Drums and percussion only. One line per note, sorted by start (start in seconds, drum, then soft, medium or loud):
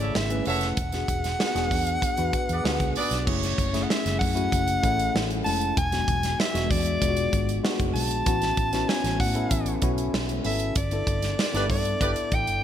0.15 snare loud
0.30 closed hi-hat soft
0.45 open hi-hat medium
0.61 snare soft
0.61 closed hi-hat medium
0.77 kick loud
0.77 closed hi-hat loud
0.92 snare soft
0.92 closed hi-hat medium
1.08 kick medium
1.08 closed hi-hat medium
1.24 snare soft
1.24 closed hi-hat medium
1.40 snare loud
1.56 snare soft
1.56 closed hi-hat soft
1.71 kick medium
1.71 open hi-hat medium
1.87 closed hi-hat medium
2.02 kick medium
2.02 closed hi-hat medium
2.17 closed hi-hat medium
2.33 kick medium
2.33 closed hi-hat medium
2.49 closed hi-hat soft
2.65 snare loud
2.80 kick medium
2.80 closed hi-hat soft
2.96 open hi-hat medium
3.11 snare soft
3.11 closed hi-hat medium
3.27 kick loud
3.27 crash medium
3.43 snare soft
3.43 closed hi-hat medium
3.58 kick medium
3.58 closed hi-hat medium
3.74 snare soft
3.74 closed hi-hat medium
3.90 snare loud
4.06 snare soft
4.06 closed hi-hat medium
4.21 kick loud
4.21 open hi-hat medium
4.37 closed hi-hat soft
4.52 kick medium
4.52 closed hi-hat medium
4.68 closed hi-hat medium
4.83 kick medium
4.83 closed hi-hat medium
4.99 closed hi-hat soft
5.16 snare loud
5.30 closed hi-hat soft
5.46 open hi-hat medium
5.61 closed hi-hat medium
5.77 kick loud
5.77 closed hi-hat loud
5.92 snare soft
5.92 closed hi-hat medium
6.08 kick medium
6.08 closed hi-hat medium
6.23 snare soft
6.23 closed hi-hat medium
6.40 snare loud
6.55 snare soft
6.55 closed hi-hat medium
6.71 kick loud
6.71 open hi-hat medium
6.86 closed hi-hat soft
7.02 kick medium
7.02 closed hi-hat medium
7.17 closed hi-hat medium
7.33 kick medium
7.33 closed hi-hat medium
7.49 closed hi-hat soft
7.65 snare loud
7.80 kick loud
7.80 closed hi-hat medium
7.96 open hi-hat medium
8.11 closed hi-hat medium
8.26 kick loud
8.26 closed hi-hat loud
8.42 snare soft
8.42 closed hi-hat medium
8.57 kick medium
8.57 closed hi-hat medium
8.73 snare soft
8.73 closed hi-hat medium
8.89 snare loud
9.04 snare soft
9.04 closed hi-hat medium
9.20 kick medium
9.20 open hi-hat medium
9.35 closed hi-hat medium
9.51 kick medium
9.51 closed hi-hat loud
9.66 closed hi-hat medium
9.82 kick medium
9.82 closed hi-hat medium
9.98 closed hi-hat soft
10.14 snare loud
10.29 closed hi-hat soft
10.44 open hi-hat medium
10.60 closed hi-hat medium
10.76 kick loud
10.76 closed hi-hat loud
10.91 closed hi-hat medium
11.07 kick medium
11.07 closed hi-hat medium
11.22 snare soft
11.22 closed hi-hat medium
11.39 snare loud
11.54 snare soft
11.54 closed hi-hat medium
11.70 kick medium
11.70 open hi-hat medium
11.85 closed hi-hat medium
12.01 kick medium
12.01 closed hi-hat medium
12.16 closed hi-hat medium
12.32 kick medium
12.32 closed hi-hat medium
12.47 closed hi-hat soft